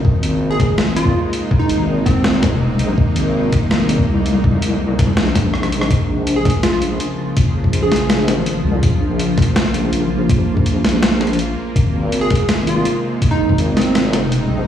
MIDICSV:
0, 0, Header, 1, 5, 480
1, 0, Start_track
1, 0, Key_signature, -5, "minor"
1, 0, Tempo, 365854
1, 64, Time_signature, 4, 2, 24, 8
1, 19248, End_track
2, 0, Start_track
2, 0, Title_t, "Digital synth lead"
2, 0, Program_c, 0, 84
2, 663, Note_on_c, 0, 68, 96
2, 951, Note_off_c, 0, 68, 0
2, 1265, Note_on_c, 0, 65, 100
2, 1553, Note_off_c, 0, 65, 0
2, 2092, Note_on_c, 0, 63, 96
2, 2386, Note_off_c, 0, 63, 0
2, 2698, Note_on_c, 0, 60, 97
2, 3061, Note_off_c, 0, 60, 0
2, 8347, Note_on_c, 0, 68, 99
2, 8633, Note_off_c, 0, 68, 0
2, 8699, Note_on_c, 0, 65, 93
2, 8779, Note_off_c, 0, 65, 0
2, 8827, Note_on_c, 0, 65, 79
2, 8902, Note_off_c, 0, 65, 0
2, 10267, Note_on_c, 0, 68, 98
2, 10938, Note_off_c, 0, 68, 0
2, 16022, Note_on_c, 0, 68, 95
2, 16311, Note_off_c, 0, 68, 0
2, 16628, Note_on_c, 0, 65, 97
2, 16914, Note_off_c, 0, 65, 0
2, 17462, Note_on_c, 0, 63, 92
2, 17751, Note_off_c, 0, 63, 0
2, 18061, Note_on_c, 0, 60, 95
2, 18423, Note_off_c, 0, 60, 0
2, 19248, End_track
3, 0, Start_track
3, 0, Title_t, "Synth drone"
3, 0, Program_c, 1, 95
3, 0, Note_on_c, 1, 63, 91
3, 66, Note_on_c, 1, 56, 77
3, 69, Note_on_c, 1, 48, 85
3, 71, Note_on_c, 1, 58, 77
3, 7691, Note_off_c, 1, 63, 0
3, 7692, Note_off_c, 1, 56, 0
3, 7694, Note_off_c, 1, 48, 0
3, 7695, Note_off_c, 1, 58, 0
3, 7744, Note_on_c, 1, 65, 93
3, 7745, Note_on_c, 1, 53, 77
3, 7745, Note_on_c, 1, 58, 77
3, 7746, Note_on_c, 1, 49, 87
3, 15371, Note_off_c, 1, 65, 0
3, 15372, Note_off_c, 1, 49, 0
3, 15372, Note_off_c, 1, 53, 0
3, 15430, Note_on_c, 1, 56, 76
3, 15430, Note_on_c, 1, 63, 93
3, 15433, Note_on_c, 1, 48, 86
3, 19248, Note_off_c, 1, 48, 0
3, 19248, Note_off_c, 1, 56, 0
3, 19248, Note_off_c, 1, 58, 0
3, 19248, Note_off_c, 1, 63, 0
3, 19248, End_track
4, 0, Start_track
4, 0, Title_t, "Wobble bass"
4, 0, Program_c, 2, 39
4, 61, Note_on_c, 2, 32, 95
4, 1483, Note_off_c, 2, 32, 0
4, 2221, Note_on_c, 2, 32, 102
4, 3643, Note_off_c, 2, 32, 0
4, 3661, Note_on_c, 2, 34, 100
4, 3883, Note_off_c, 2, 34, 0
4, 3906, Note_on_c, 2, 32, 94
4, 5326, Note_off_c, 2, 32, 0
4, 5344, Note_on_c, 2, 36, 98
4, 6765, Note_off_c, 2, 36, 0
4, 6783, Note_on_c, 2, 34, 98
4, 7724, Note_off_c, 2, 34, 0
4, 7746, Note_on_c, 2, 34, 99
4, 9166, Note_off_c, 2, 34, 0
4, 9900, Note_on_c, 2, 34, 99
4, 10897, Note_off_c, 2, 34, 0
4, 10897, Note_on_c, 2, 33, 99
4, 11186, Note_off_c, 2, 33, 0
4, 11186, Note_on_c, 2, 32, 99
4, 11323, Note_off_c, 2, 32, 0
4, 11340, Note_on_c, 2, 36, 97
4, 11563, Note_off_c, 2, 36, 0
4, 11586, Note_on_c, 2, 34, 98
4, 13006, Note_off_c, 2, 34, 0
4, 13021, Note_on_c, 2, 34, 95
4, 14443, Note_off_c, 2, 34, 0
4, 14462, Note_on_c, 2, 34, 95
4, 15164, Note_off_c, 2, 34, 0
4, 15426, Note_on_c, 2, 32, 94
4, 16846, Note_off_c, 2, 32, 0
4, 17580, Note_on_c, 2, 32, 96
4, 19003, Note_off_c, 2, 32, 0
4, 19020, Note_on_c, 2, 34, 100
4, 19243, Note_off_c, 2, 34, 0
4, 19248, End_track
5, 0, Start_track
5, 0, Title_t, "Drums"
5, 62, Note_on_c, 9, 36, 118
5, 194, Note_off_c, 9, 36, 0
5, 301, Note_on_c, 9, 42, 73
5, 433, Note_off_c, 9, 42, 0
5, 782, Note_on_c, 9, 36, 107
5, 784, Note_on_c, 9, 40, 53
5, 784, Note_on_c, 9, 42, 68
5, 913, Note_off_c, 9, 36, 0
5, 916, Note_off_c, 9, 40, 0
5, 916, Note_off_c, 9, 42, 0
5, 1023, Note_on_c, 9, 38, 114
5, 1154, Note_off_c, 9, 38, 0
5, 1266, Note_on_c, 9, 42, 78
5, 1383, Note_on_c, 9, 36, 65
5, 1397, Note_off_c, 9, 42, 0
5, 1514, Note_off_c, 9, 36, 0
5, 1745, Note_on_c, 9, 42, 66
5, 1876, Note_off_c, 9, 42, 0
5, 1983, Note_on_c, 9, 36, 109
5, 2114, Note_off_c, 9, 36, 0
5, 2223, Note_on_c, 9, 42, 77
5, 2354, Note_off_c, 9, 42, 0
5, 2704, Note_on_c, 9, 36, 104
5, 2705, Note_on_c, 9, 40, 56
5, 2705, Note_on_c, 9, 42, 69
5, 2836, Note_off_c, 9, 36, 0
5, 2836, Note_off_c, 9, 40, 0
5, 2836, Note_off_c, 9, 42, 0
5, 2943, Note_on_c, 9, 38, 115
5, 3074, Note_off_c, 9, 38, 0
5, 3184, Note_on_c, 9, 40, 79
5, 3184, Note_on_c, 9, 42, 76
5, 3185, Note_on_c, 9, 36, 61
5, 3316, Note_off_c, 9, 40, 0
5, 3316, Note_off_c, 9, 42, 0
5, 3317, Note_off_c, 9, 36, 0
5, 3664, Note_on_c, 9, 42, 65
5, 3795, Note_off_c, 9, 42, 0
5, 3907, Note_on_c, 9, 36, 112
5, 4038, Note_off_c, 9, 36, 0
5, 4145, Note_on_c, 9, 42, 77
5, 4276, Note_off_c, 9, 42, 0
5, 4625, Note_on_c, 9, 40, 56
5, 4625, Note_on_c, 9, 42, 68
5, 4627, Note_on_c, 9, 36, 101
5, 4756, Note_off_c, 9, 40, 0
5, 4756, Note_off_c, 9, 42, 0
5, 4758, Note_off_c, 9, 36, 0
5, 4866, Note_on_c, 9, 38, 110
5, 4997, Note_off_c, 9, 38, 0
5, 5105, Note_on_c, 9, 42, 76
5, 5227, Note_on_c, 9, 36, 62
5, 5236, Note_off_c, 9, 42, 0
5, 5358, Note_off_c, 9, 36, 0
5, 5585, Note_on_c, 9, 42, 65
5, 5717, Note_off_c, 9, 42, 0
5, 5826, Note_on_c, 9, 36, 112
5, 5957, Note_off_c, 9, 36, 0
5, 6064, Note_on_c, 9, 42, 81
5, 6195, Note_off_c, 9, 42, 0
5, 6547, Note_on_c, 9, 36, 102
5, 6547, Note_on_c, 9, 40, 60
5, 6547, Note_on_c, 9, 42, 69
5, 6678, Note_off_c, 9, 36, 0
5, 6678, Note_off_c, 9, 40, 0
5, 6678, Note_off_c, 9, 42, 0
5, 6782, Note_on_c, 9, 38, 115
5, 6913, Note_off_c, 9, 38, 0
5, 7025, Note_on_c, 9, 40, 83
5, 7025, Note_on_c, 9, 42, 82
5, 7027, Note_on_c, 9, 36, 59
5, 7156, Note_off_c, 9, 40, 0
5, 7156, Note_off_c, 9, 42, 0
5, 7158, Note_off_c, 9, 36, 0
5, 7263, Note_on_c, 9, 37, 61
5, 7389, Note_off_c, 9, 37, 0
5, 7389, Note_on_c, 9, 37, 62
5, 7389, Note_on_c, 9, 42, 37
5, 7509, Note_off_c, 9, 42, 0
5, 7509, Note_on_c, 9, 42, 69
5, 7520, Note_off_c, 9, 37, 0
5, 7629, Note_on_c, 9, 37, 82
5, 7640, Note_off_c, 9, 42, 0
5, 7747, Note_on_c, 9, 36, 113
5, 7748, Note_on_c, 9, 42, 81
5, 7760, Note_off_c, 9, 37, 0
5, 7878, Note_off_c, 9, 36, 0
5, 7879, Note_off_c, 9, 42, 0
5, 8224, Note_on_c, 9, 42, 83
5, 8355, Note_off_c, 9, 42, 0
5, 8466, Note_on_c, 9, 36, 104
5, 8468, Note_on_c, 9, 40, 58
5, 8468, Note_on_c, 9, 42, 52
5, 8525, Note_off_c, 9, 42, 0
5, 8525, Note_on_c, 9, 42, 68
5, 8598, Note_off_c, 9, 36, 0
5, 8599, Note_off_c, 9, 40, 0
5, 8656, Note_off_c, 9, 42, 0
5, 8701, Note_on_c, 9, 38, 116
5, 8701, Note_on_c, 9, 42, 80
5, 8833, Note_off_c, 9, 38, 0
5, 8833, Note_off_c, 9, 42, 0
5, 8944, Note_on_c, 9, 42, 70
5, 9075, Note_off_c, 9, 42, 0
5, 9184, Note_on_c, 9, 42, 84
5, 9315, Note_off_c, 9, 42, 0
5, 9664, Note_on_c, 9, 42, 85
5, 9666, Note_on_c, 9, 36, 121
5, 9796, Note_off_c, 9, 42, 0
5, 9798, Note_off_c, 9, 36, 0
5, 10027, Note_on_c, 9, 36, 63
5, 10144, Note_on_c, 9, 42, 80
5, 10158, Note_off_c, 9, 36, 0
5, 10275, Note_off_c, 9, 42, 0
5, 10386, Note_on_c, 9, 38, 67
5, 10386, Note_on_c, 9, 40, 56
5, 10386, Note_on_c, 9, 42, 54
5, 10443, Note_off_c, 9, 42, 0
5, 10443, Note_on_c, 9, 42, 70
5, 10517, Note_off_c, 9, 38, 0
5, 10517, Note_off_c, 9, 40, 0
5, 10574, Note_off_c, 9, 42, 0
5, 10622, Note_on_c, 9, 38, 124
5, 10622, Note_on_c, 9, 42, 82
5, 10753, Note_off_c, 9, 38, 0
5, 10753, Note_off_c, 9, 42, 0
5, 10864, Note_on_c, 9, 40, 79
5, 10864, Note_on_c, 9, 42, 73
5, 10995, Note_off_c, 9, 40, 0
5, 10995, Note_off_c, 9, 42, 0
5, 11104, Note_on_c, 9, 42, 85
5, 11235, Note_off_c, 9, 42, 0
5, 11584, Note_on_c, 9, 42, 86
5, 11585, Note_on_c, 9, 36, 124
5, 11715, Note_off_c, 9, 42, 0
5, 11716, Note_off_c, 9, 36, 0
5, 12063, Note_on_c, 9, 42, 80
5, 12195, Note_off_c, 9, 42, 0
5, 12301, Note_on_c, 9, 40, 55
5, 12301, Note_on_c, 9, 42, 53
5, 12304, Note_on_c, 9, 36, 115
5, 12361, Note_off_c, 9, 42, 0
5, 12361, Note_on_c, 9, 42, 69
5, 12432, Note_off_c, 9, 40, 0
5, 12435, Note_off_c, 9, 36, 0
5, 12492, Note_off_c, 9, 42, 0
5, 12543, Note_on_c, 9, 38, 127
5, 12543, Note_on_c, 9, 42, 83
5, 12674, Note_off_c, 9, 38, 0
5, 12674, Note_off_c, 9, 42, 0
5, 12783, Note_on_c, 9, 42, 67
5, 12914, Note_off_c, 9, 42, 0
5, 13024, Note_on_c, 9, 42, 83
5, 13155, Note_off_c, 9, 42, 0
5, 13506, Note_on_c, 9, 36, 117
5, 13507, Note_on_c, 9, 42, 81
5, 13637, Note_off_c, 9, 36, 0
5, 13638, Note_off_c, 9, 42, 0
5, 13867, Note_on_c, 9, 36, 64
5, 13986, Note_on_c, 9, 42, 74
5, 13998, Note_off_c, 9, 36, 0
5, 14117, Note_off_c, 9, 42, 0
5, 14229, Note_on_c, 9, 38, 65
5, 14229, Note_on_c, 9, 40, 52
5, 14229, Note_on_c, 9, 42, 50
5, 14285, Note_off_c, 9, 42, 0
5, 14285, Note_on_c, 9, 42, 69
5, 14360, Note_off_c, 9, 38, 0
5, 14360, Note_off_c, 9, 40, 0
5, 14416, Note_off_c, 9, 42, 0
5, 14466, Note_on_c, 9, 38, 122
5, 14466, Note_on_c, 9, 42, 80
5, 14597, Note_off_c, 9, 38, 0
5, 14597, Note_off_c, 9, 42, 0
5, 14706, Note_on_c, 9, 40, 77
5, 14706, Note_on_c, 9, 42, 30
5, 14786, Note_off_c, 9, 42, 0
5, 14786, Note_on_c, 9, 42, 40
5, 14837, Note_off_c, 9, 40, 0
5, 14868, Note_off_c, 9, 42, 0
5, 14868, Note_on_c, 9, 42, 49
5, 14943, Note_off_c, 9, 42, 0
5, 14943, Note_on_c, 9, 42, 77
5, 15074, Note_off_c, 9, 42, 0
5, 15427, Note_on_c, 9, 36, 117
5, 15428, Note_on_c, 9, 42, 75
5, 15558, Note_off_c, 9, 36, 0
5, 15560, Note_off_c, 9, 42, 0
5, 15905, Note_on_c, 9, 42, 77
5, 16036, Note_off_c, 9, 42, 0
5, 16144, Note_on_c, 9, 40, 53
5, 16144, Note_on_c, 9, 42, 49
5, 16146, Note_on_c, 9, 36, 109
5, 16208, Note_off_c, 9, 42, 0
5, 16208, Note_on_c, 9, 42, 65
5, 16275, Note_off_c, 9, 40, 0
5, 16277, Note_off_c, 9, 36, 0
5, 16339, Note_off_c, 9, 42, 0
5, 16383, Note_on_c, 9, 38, 119
5, 16383, Note_on_c, 9, 42, 76
5, 16514, Note_off_c, 9, 38, 0
5, 16514, Note_off_c, 9, 42, 0
5, 16626, Note_on_c, 9, 42, 64
5, 16757, Note_off_c, 9, 42, 0
5, 16864, Note_on_c, 9, 42, 76
5, 16995, Note_off_c, 9, 42, 0
5, 17342, Note_on_c, 9, 42, 75
5, 17343, Note_on_c, 9, 36, 111
5, 17474, Note_off_c, 9, 42, 0
5, 17475, Note_off_c, 9, 36, 0
5, 17704, Note_on_c, 9, 36, 58
5, 17822, Note_on_c, 9, 42, 74
5, 17835, Note_off_c, 9, 36, 0
5, 17953, Note_off_c, 9, 42, 0
5, 18064, Note_on_c, 9, 38, 62
5, 18064, Note_on_c, 9, 40, 57
5, 18064, Note_on_c, 9, 42, 50
5, 18125, Note_off_c, 9, 42, 0
5, 18125, Note_on_c, 9, 42, 66
5, 18195, Note_off_c, 9, 38, 0
5, 18195, Note_off_c, 9, 40, 0
5, 18256, Note_off_c, 9, 42, 0
5, 18305, Note_on_c, 9, 38, 116
5, 18305, Note_on_c, 9, 42, 77
5, 18436, Note_off_c, 9, 38, 0
5, 18436, Note_off_c, 9, 42, 0
5, 18543, Note_on_c, 9, 40, 81
5, 18543, Note_on_c, 9, 42, 62
5, 18675, Note_off_c, 9, 40, 0
5, 18675, Note_off_c, 9, 42, 0
5, 18787, Note_on_c, 9, 42, 77
5, 18918, Note_off_c, 9, 42, 0
5, 19248, End_track
0, 0, End_of_file